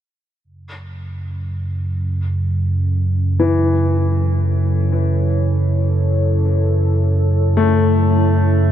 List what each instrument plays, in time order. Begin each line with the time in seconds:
0.44 synth drone F#2 C#3, ambient pad A3
0.96 ambient pad A4
2.09 ambient pad E4
3.39 grand piano E3
3.46 ambient pad C#5
7.57 grand piano A3